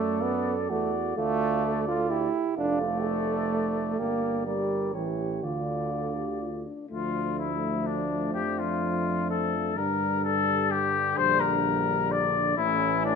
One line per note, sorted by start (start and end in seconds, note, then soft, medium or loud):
0.00 0.71 F#2 medium
0.00 0.24 A3 medium
0.00 0.69 A4 soft
0.00 0.71 A4 medium
0.00 0.70 D5 medium
0.23 0.56 B3 medium
0.70 1.17 E2 medium
0.70 0.93 A3 medium
0.70 1.16 F#4 medium
0.70 1.17 A4 medium
0.70 1.16 D5 medium
1.17 2.28 D2 medium
1.17 1.84 A3 medium
1.17 1.63 F4 medium
1.17 2.28 A4 medium
1.17 2.28 D5 medium
1.64 2.09 A4 medium
1.88 2.12 F4 medium
2.10 2.57 E4 medium
2.10 2.56 G4 medium
2.57 3.95 F1 medium
2.57 2.80 D4 medium
2.57 3.06 F4 medium
2.57 3.95 A4 medium
2.57 3.95 D5 medium
2.81 4.01 A3 medium
3.04 3.71 A4 medium
3.98 4.96 G1 medium
3.98 4.46 A#3 medium
3.98 4.43 G4 medium
3.98 4.43 G4 soft
3.98 4.44 D5 soft
4.46 4.94 G3 medium
4.46 4.94 G4 soft
4.46 4.96 A#4 soft
4.46 4.95 D5 soft
4.94 5.43 A1 soft
4.94 5.45 E3 soft
4.94 5.45 G4 soft
4.94 5.45 C#5 soft
5.43 6.64 D2 soft
5.43 6.66 D3 soft
5.43 5.88 F4 soft
5.43 6.67 F4 soft
5.43 6.66 D5 soft
5.92 6.15 A4 soft
6.17 6.41 G4 soft
6.42 6.66 F4 soft
6.66 6.89 D4 soft
6.90 8.31 D2 medium
6.90 9.78 F3 soft
6.90 9.79 A3 soft
6.90 9.73 D4 soft
6.90 7.36 F4 medium
7.38 7.88 E4 medium
7.86 8.33 D4 medium
8.34 9.79 F2 medium
8.34 8.60 G4 medium
8.59 9.30 F4 medium
9.31 9.78 A4 medium
9.76 11.18 G2 medium
9.76 12.57 D3 medium
9.76 12.41 G3 soft
9.76 12.53 D4 medium
9.76 10.23 A#4 medium
10.24 10.72 A4 medium
10.71 11.19 G4 medium
11.17 12.55 A#1 medium
11.17 11.42 C5 medium
11.40 12.13 A#4 medium
12.12 12.56 D5 medium
12.57 13.15 A1 medium
12.57 13.15 E3 medium
12.57 13.15 A3 medium
12.57 13.15 C#4 medium
12.57 13.03 E4 medium
13.05 13.15 D4 medium